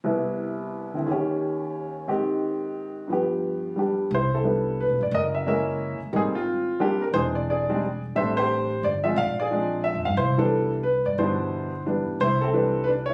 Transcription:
0.04 1.06 C2 soft
0.04 1.06 C3 soft
0.04 1.07 B3 soft
0.04 0.95 E4 soft
0.94 1.06 D3 soft
0.94 1.07 C4 soft
0.94 1.08 E4 soft
1.06 2.08 D#2 soft
1.06 2.07 D#3 soft
1.06 2.10 C#4 soft
1.12 2.08 G4 soft
2.08 3.09 G#2 soft
2.08 3.09 D#3 soft
2.08 3.09 C4 soft
2.08 3.10 G4 soft
3.08 4.10 G2 soft
3.08 4.10 F3 soft
3.08 4.11 B3 soft
3.13 3.78 G4 soft
3.76 4.10 G3 soft
3.76 4.11 D4 soft
3.76 4.12 G4 soft
4.11 4.85 C2 medium
4.11 4.33 E4 medium
4.11 4.34 C5 medium
4.35 4.43 E4 soft
4.35 4.81 A4 medium
4.44 4.95 G3 soft
4.44 4.95 B3 soft
4.44 4.95 D4 soft
4.44 4.95 E4 soft
4.80 5.01 B4 medium
4.89 5.00 B1 soft
5.01 5.11 G1 medium
5.01 5.13 D5 medium
5.11 5.96 F#1 medium
5.11 5.46 A#4 medium
5.11 5.20 D#5 medium
5.35 5.46 E5 medium
5.46 5.97 G#3 soft
5.46 5.97 A#3 soft
5.46 5.97 C#4 soft
5.46 5.97 E4 medium
5.46 5.98 A#4 medium
5.46 5.98 E5 medium
6.01 muted upright bass stroke soft
6.13 7.10 G#1 medium
6.13 6.32 G3 medium
6.13 6.32 A#3 soft
6.13 6.15 C4 soft
6.13 6.32 D#4 medium
6.13 6.21 G#4 medium
6.17 6.35 C4 medium
6.35 6.78 C4 soft
6.35 6.82 F4 medium
6.80 6.99 G3 medium
6.80 6.99 A#3 soft
6.80 6.99 C4 soft
6.80 6.99 D4 medium
6.80 7.03 G4 medium
7.02 7.07 A#4 medium
7.13 8.11 E1 medium
7.13 7.65 E3 soft
7.13 7.65 G#3 soft
7.13 7.65 C4 soft
7.13 7.65 D4 medium
7.13 7.50 G#4 medium
7.13 7.19 C5 medium
7.35 7.40 D5 medium
7.50 8.01 G#4 medium
7.50 8.00 D5 medium
7.70 7.81 G3 medium
7.70 7.81 G#3 soft
7.70 7.81 C4 medium
7.70 7.81 D4 medium
8.15 8.79 A1 medium
8.15 8.66 G3 soft
8.15 8.66 A3 soft
8.15 8.67 C4 soft
8.15 8.66 D4 soft
8.15 8.35 C5 medium
8.15 8.38 E5 medium
8.37 8.81 G4 medium
8.37 8.84 C5 medium
8.83 9.14 G1 medium
8.83 8.89 D5 medium
9.04 9.15 F3 medium
9.04 9.16 G#3 soft
9.04 9.15 C4 soft
9.04 9.16 F4 medium
9.04 9.15 E5 medium
9.16 9.91 A#1 medium
9.16 9.38 D5 medium
9.16 9.39 F5 medium
9.40 9.83 G#4 medium
9.40 9.82 D5 medium
9.51 10.01 F3 soft
9.51 10.01 G#3 soft
9.51 10.01 C4 soft
9.51 10.01 D4 soft
9.84 10.06 E5 medium
9.95 10.05 F2 medium
10.05 10.16 G2 medium
10.05 10.17 F5 medium
10.17 11.02 C2 medium
10.17 10.69 E4 medium
10.17 10.37 C5 medium
10.37 10.82 E3 medium
10.37 10.82 G3 medium
10.37 10.82 B3 soft
10.37 10.82 D4 medium
10.37 10.70 A4 medium
10.83 11.04 B4 medium
11.05 11.17 G2 medium
11.05 11.19 D5 medium
11.18 12.03 G1 medium
11.18 11.69 B2 soft
11.18 11.69 E3 soft
11.18 11.69 G3 soft
11.18 11.70 D4 soft
11.18 11.83 E4 medium
11.18 11.82 C5 medium
11.86 12.20 E3 soft
11.86 12.20 G3 soft
11.86 12.20 B3 soft
11.86 12.20 D4 soft
12.07 muted upright bass stroke soft
12.20 13.14 C2 medium
12.20 12.42 E4 medium
12.20 12.42 C5 medium
12.41 12.85 C4 medium
12.41 12.84 A4 medium
12.53 13.04 E3 soft
12.53 13.04 G3 soft
12.53 12.86 D4 medium
12.53 12.82 B4 soft
12.84 12.89 B4 medium
12.88 12.93 D4 medium
13.06 13.14 E4 medium
13.06 13.14 C#5 medium

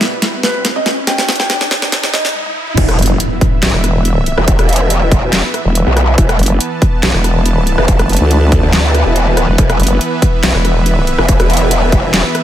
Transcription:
0.00 2.31 B2 medium
0.00 2.31 G3 medium
0.00 2.31 E4 medium
0.00 2.31 B4 medium
0.00 snare medium
0.00 closed hi-hat medium
0.00 riser medium
0.22 snare medium
0.22 closed hi-hat medium
0.43 0.62 B4 medium
0.43 snare medium
0.43 closed hi-hat medium
0.65 snare medium
0.65 closed hi-hat medium
0.76 0.94 D#5 loud
0.86 snare medium
0.86 closed hi-hat medium
1.07 1.25 G5 loud
1.07 snare loud
1.07 closed hi-hat medium
1.18 snare medium
1.18 closed hi-hat soft
1.29 snare loud
1.29 closed hi-hat soft
1.32 closed hi-hat medium
1.36 closed hi-hat medium
1.40 1.64 G5 loud
1.40 snare medium
1.50 snare loud
1.50 closed hi-hat medium
1.61 snare medium
1.71 snare loud
1.71 closed hi-hat medium
1.82 snare medium
1.92 snare loud
1.92 closed hi-hat medium
2.04 snare medium
2.14 2.32 D#5 medium
2.14 snare loud
2.14 closed hi-hat soft
2.25 snare medium
2.35 high tom medium
2.46 high tom medium
2.67 mid tom medium
2.77 2.97 E1 loud
2.77 12.43 E3 medium
2.77 12.43 B3 medium
2.77 12.43 B4 medium
2.77 6.17 E5 medium
2.77 kick loud
2.77 closed hi-hat medium
2.77 crash loud
2.77 impact medium
2.89 cross-stick medium
2.89 closed hi-hat soft
2.99 3.18 F#1 loud
2.99 closed hi-hat medium
3.02 closed hi-hat medium
3.06 closed hi-hat medium
3.20 closed hi-hat medium
3.41 kick loud
3.41 closed hi-hat medium
3.63 3.72 B1 loud
3.63 snare loud
3.63 clap medium
3.63 closed hi-hat medium
3.74 4.36 E1 loud
3.74 cross-stick medium
3.84 cross-stick medium
3.84 closed hi-hat medium
4.05 closed hi-hat medium
4.26 closed hi-hat medium
4.38 4.57 E1 loud
4.38 cross-stick medium
4.48 kick loud
4.48 closed hi-hat medium
4.59 5.42 E1 loud
4.59 cross-stick medium
4.59 closed hi-hat soft
4.69 closed hi-hat medium
4.73 closed hi-hat medium
4.76 closed hi-hat medium
4.90 closed hi-hat medium
5.12 kick loud
5.12 closed hi-hat medium
5.33 snare loud
5.33 clap loud
5.33 closed hi-hat medium
5.54 cross-stick medium
5.54 closed hi-hat medium
5.65 5.85 E1 medium
5.75 closed hi-hat medium
5.87 6.16 B1 loud
5.97 cross-stick medium
5.97 closed hi-hat medium
6.18 6.38 E1 loud
6.18 9.57 A5 loud
6.18 kick loud
6.18 closed hi-hat medium
6.29 cross-stick medium
6.29 closed hi-hat soft
6.39 6.59 F#1 loud
6.39 closed hi-hat medium
6.43 closed hi-hat medium
6.46 closed hi-hat medium
6.61 closed hi-hat medium
6.82 kick loud
6.82 closed hi-hat medium
7.03 7.12 B1 loud
7.03 snare loud
7.03 clap medium
7.03 closed hi-hat medium
7.14 7.76 E1 loud
7.14 cross-stick soft
7.24 cross-stick medium
7.24 closed hi-hat medium
7.46 closed hi-hat medium
7.67 closed hi-hat medium
7.78 7.98 E1 loud
7.78 cross-stick medium
7.88 kick loud
7.88 closed hi-hat medium
7.99 8.19 F#1 loud
7.99 cross-stick medium
7.99 closed hi-hat soft
8.09 closed hi-hat soft
8.13 closed hi-hat medium
8.17 closed hi-hat medium
8.21 8.61 D2 loud
8.31 closed hi-hat medium
8.52 kick loud
8.52 closed hi-hat medium
8.63 9.04 D2 loud
8.73 snare loud
8.73 clap medium
8.73 closed hi-hat medium
8.95 cross-stick medium
8.95 closed hi-hat medium
9.06 9.46 E1 loud
9.16 closed hi-hat medium
9.37 cross-stick medium
9.37 closed hi-hat medium
9.48 9.57 E1 loud
9.58 9.78 E1 loud
9.58 12.43 E5 loud
9.58 kick loud
9.58 closed hi-hat medium
9.70 cross-stick medium
9.70 closed hi-hat soft
9.80 9.99 F#1 loud
9.80 closed hi-hat soft
9.83 closed hi-hat medium
9.87 closed hi-hat medium
10.01 closed hi-hat medium
10.22 kick loud
10.22 closed hi-hat medium
10.43 10.53 B1 loud
10.43 snare loud
10.43 clap medium
10.43 closed hi-hat medium
10.55 11.17 E1 loud
10.55 cross-stick medium
10.65 cross-stick medium
10.65 closed hi-hat medium
10.86 closed hi-hat medium
11.07 closed hi-hat medium
11.18 11.38 E1 loud
11.18 cross-stick medium
11.29 kick loud
11.29 closed hi-hat medium
11.40 12.23 E1 loud
11.40 cross-stick medium
11.40 closed hi-hat soft
11.50 closed hi-hat medium
11.54 closed hi-hat medium
11.57 closed hi-hat medium
11.71 closed hi-hat medium
11.92 kick loud
11.92 closed hi-hat medium
12.14 snare loud
12.14 clap medium
12.14 closed hi-hat medium
12.35 cross-stick medium
12.35 closed hi-hat medium

